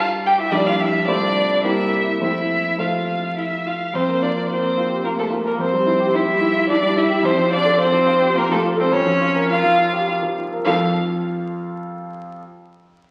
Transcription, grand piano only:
Already playing: G2 G3 D4 D5
0.51 A#1 G3 D4 D5
1.07 C2 A3 F4 C5
1.64 C2 A#3 G4 C5
2.20 F2 A3 A4 C5
2.78 F2 A3 A4 C5
3.94 F2
4.08 A#3
4.22 F4
4.36 A#4
4.50 F4
4.62 A#3
4.77 F4
4.89 G4
5.03 F4
5.16 A#3
5.30 F4
5.45 A#4
5.58 F2
5.72 G3
5.86 E4
6.00 G4
6.14 E4
6.27 G3
6.41 E4
6.55 F4
6.69 E4
6.82 G3
6.96 E4
7.10 G4
7.23 F2
7.37 F3
7.52 F4
7.66 A4
7.78 F4
7.92 F3
8.06 F4
8.22 G4
8.35 F4
8.50 F3
8.64 F4
8.77 A4
8.92 F2
9.06 F3
9.21 F4
9.35 A#4
9.50 F4
9.64 F3
9.78 F4
9.93 G4
10.08 F4
10.23 F3
10.38 F4
10.53 A#4
10.66 F2 F3 F4 A4 F5

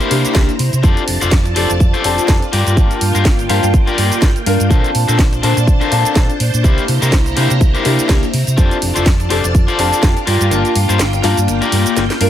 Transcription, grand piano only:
0.11 A#3 D4 E4 G4
0.35 A#3 D4 E4 G4
0.83 C4 D4 G4 A4
1.56 C4 D4 G4 A4
2.04 C4 D4 G4 A4
2.28 C4 D4 G4 A4
2.76 A#3 D4 F4 A5
3.49 A#3 D4 F4 A5
4.46 A#3 D4 F4 A#4
4.70 C4 D4 F4 A5
5.43 C4 D4 F4 A5
5.91 C4 D4 F4 A4
6.15 C4 D4 F4 A4
6.64 A#3 D4 E4 G4
7.37 A#3 D4 E4 G4
7.85 A#3 D4 E4 G4
8.09 A#3 D4 E4 G4
8.57 C4 D4 G4 A4
9.30 C4 D4 G4 A4
9.78 C4 D4 G4 A4
10.03 C4 D4 G4 A4
10.51 A#3 D4 F4 A5
11.24 A#3 D4 F4 A5
12.20 A#3 D4 F4 A#4

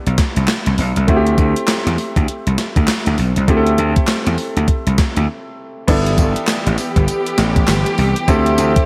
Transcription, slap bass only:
0.07 B1
0.37 C2
0.67 C2
0.78 B1
0.97 C2
1.08 D2
1.38 D2
1.87 E2
2.16 D2
2.47 C2
2.76 D2
3.07 D2
3.19 B1
3.37 C2
3.48 D2
3.78 D2
4.27 E2
4.57 D2
4.87 C2
5.17 D2
5.88 G1
6.18 G1
6.67 A1
6.96 G1
7.38 A1
7.68 G1
7.98 C2
8.28 D2
8.58 D2

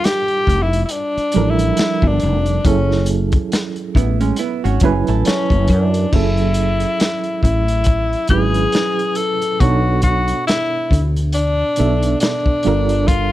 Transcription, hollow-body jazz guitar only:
3.96 B3 E4
4.21 G#3 C#4
4.39 B3 E4
4.64 C#4 F#4
4.84 C#4 G#4
5.08 E4 A4

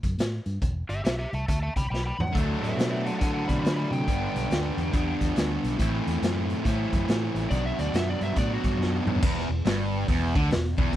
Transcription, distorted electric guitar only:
2.32 D3 F#3 A3 D4
3.20 D3 F#3 A3 D4
4.07 G2 D3 G3 B3 D4
4.92 G2 D3 G3 B3 D4
5.78 A2 E3 A3 C4 E4
6.64 A2 E3 A3 C4 E4
7.50 B2 F#3 B3 D4
8.37 B2 F#3 B3 D4
9.24 E2
9.50 E2
9.65 G2
10.08 E2
10.35 D3
10.50 E2
10.78 E2

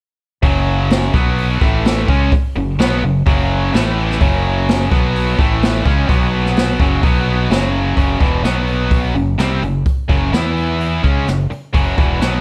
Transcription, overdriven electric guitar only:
0.43 F#2 C#3 F#3
1.13 B2 F#3 B3
1.61 A2 E3 A3
2.08 C#3 G#3 C#4
2.33 muted overdriven electric guitar stroke
2.56 F#2 C#3
2.79 B2 F#3 B3
3.02 F#2 C#3
3.27 F#2 C#3 F#3
3.74 A2 E3 A3
4.21 F#2 C#3 F#3
4.91 B2 F#3 B3
5.38 A2 E3 A3
5.85 C#3 G#3 C#4
6.08 B2 F#3 B3
6.79 F#2 C#3 F#3
7.03 B2 F#3 B3
7.50 F#2 C#3 F#3
7.97 F#2 C#3 F#3
8.21 E2 B2 E3
8.44 B2 F#3 B3
9.15 F#2 C#3
9.38 C3 G3 C4
9.62 F#2 C#3
10.08 F#2 C#3 F#3
10.32 E3 B3 E4
11.03 C#3 G#3 C#4
11.26 F#2 C#3
11.50 muted overdriven electric guitar stroke
11.73 F#2 C#3 F#3
11.97 E2 B2 E3
12.20 B2 F#3 B3

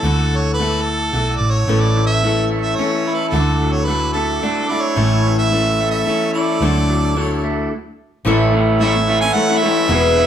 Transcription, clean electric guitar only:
1.69 A2
1.96 E3
2.24 E3
2.52 A3
2.79 C#4
3.07 E4
3.36 D3
3.62 F#3
3.88 F#3
4.15 A3
4.43 D4
4.70 E4
4.98 A2
5.27 E3
5.52 E3
5.81 A3
6.08 C#4
6.35 E4
6.63 D3
6.90 F#3
7.17 F#3
7.44 A3
8.25 A2 E3 A3 C#4 E4
8.53 E3 A3 C#4 E4
8.80 A2 E3 A3 C#4 E4
8.96 muted clean electric guitar stroke
9.07 E3 A3 C#4 E4
9.22 A3 C#4 E4
9.49 A3 C#4 E4
9.63 E3 A3 C#4 E4
9.89 E2 B2 E3 G#3 B3 E4
10.17 E3 G#3 B3 E4

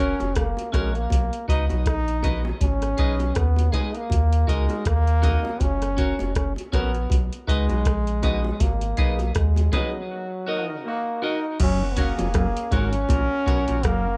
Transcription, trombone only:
Already playing: C#4
0.38 A#3
0.75 G#3
0.96 A#3
1.50 D#4
1.87 D#4
2.62 C#4
3.37 B3
3.74 G#3
3.95 A#3
4.49 G#3
4.87 A#3
5.62 C#4
6.37 C#4
6.73 B3
7.49 G#3
8.61 A#3
9.36 G#3
9.74 F#3
10.87 A#3
11.23 D#4
11.61 C#4
11.92 B3
11.99 A#3
12.36 A#3
12.74 C#4
13.85 A#3

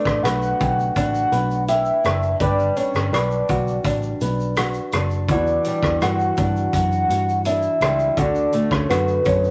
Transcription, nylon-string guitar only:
Already playing: A3 D4 B4
0.24 B4
0.59 G4
0.96 D4
1.32 B4
1.69 G4
2.04 D4
2.40 G3 B4
2.77 D4
3.13 B4
3.49 F#4
3.85 D4
4.21 B4
4.58 F#4
4.95 D4
5.30 E3 F#4
5.66 G3
6.02 F#4
6.38 D4
7.10 F#4
7.46 D4
7.82 G3
8.17 D3 F#4
8.54 A3
8.90 F#4
9.25 C#4

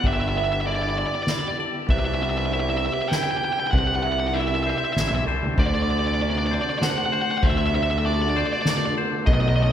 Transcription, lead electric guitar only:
0.06 E5
0.13 E5
0.21 E5
0.29 E5
0.38 E5
0.44 E5
0.53 E5
0.61 E5
0.67 D5
0.75 D5
0.82 D5
0.90 D5
0.98 D5
1.06 D5
1.15 D5
1.23 D5
1.31 D5
1.39 D5
1.48 D5
1.90 E5
1.99 E5
2.05 E5
2.14 E5
2.23 E5
2.30 E5
2.38 E5
2.46 E5
2.53 E5
2.60 E5
2.70 E5
2.77 E5
2.86 E5
2.93 E5
3.02 E5
3.08 E5 G5
3.16 G5
3.23 G5
3.31 G5
3.37 G5
3.45 G5
3.53 G5
3.60 G5
3.67 F#5 G5
3.79 F#5
3.87 F#5
3.96 F#5
4.03 F#5
4.12 F#5
4.20 F#5
4.28 F#5
4.34 E5
4.41 E5
4.48 E5
4.55 E5
4.64 E5
4.70 E5
4.78 E5
4.85 E5
4.93 E5
5.01 E5
5.09 E5
5.15 E5
5.59 D5
5.66 D5
5.75 D5
5.82 D5
5.90 D5
5.99 D5
6.07 D5
6.15 D5
6.22 D5
6.30 D5
6.38 D5
6.47 D5
6.54 D5
6.62 D5
6.70 D5
6.79 D5 F#5
6.90 F#5
6.98 F#5
7.06 F#5
7.14 F#5
7.22 F#5
7.31 F#5
7.38 F#5
7.43 E5
7.50 E5
7.58 E5
7.67 E5
7.75 E5
7.83 E5
7.91 E5
7.99 E5
8.06 D5
8.14 D5
8.22 D5
8.30 D5
8.38 D5
8.47 D5
8.53 D5
8.62 D5
8.70 D5
8.77 D5
8.86 D5
9.26 D#5
9.34 D#5
9.41 D#5
9.49 D#5
9.56 D#5
9.63 D#5

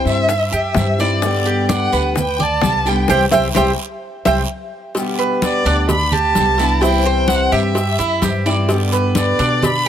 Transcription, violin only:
0.07 E5
0.55 E5
1.00 D5
1.71 F#5
2.18 G5
2.42 A5
2.88 G5
3.11 G5
3.33 G5
3.56 G5
4.27 G5
5.43 D5
5.90 B5
6.12 A5
6.80 G5
7.27 F#5
7.52 E5
9.17 D5
9.64 B5

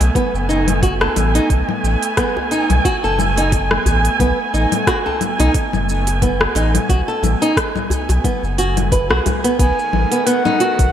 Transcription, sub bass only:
0.00 B1
0.34 F#1
1.16 A1
1.50 B1
1.84 A1
2.70 B1
3.04 F#1
3.86 A1
4.20 B1
4.54 A1
5.40 B1
5.73 F#1
6.55 A1
6.89 B1
7.23 A1
8.09 B1
8.43 F#1
9.10 B1
9.59 B1
9.93 A1
10.79 B1

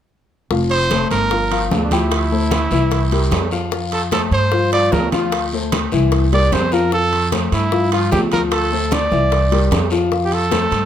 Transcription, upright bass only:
0.51 F1
1.11 G1
1.71 D2
2.71 C2
3.32 F2
4.31 G2
4.92 D2
5.92 C2
6.52 F2
7.52 G2
8.12 D2
9.11 C2
9.71 F2
10.71 G2

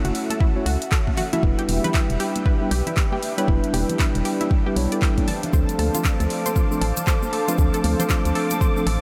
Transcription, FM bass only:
0.05 F#1
0.66 C#2
1.43 E1
1.69 E1
2.10 E1
2.71 B1
3.48 E1
3.74 E1
4.15 E1
4.76 B1
5.53 D2
5.79 D2
6.20 D2
6.82 A1
7.58 D2
7.84 D2
8.25 D2
8.87 A1

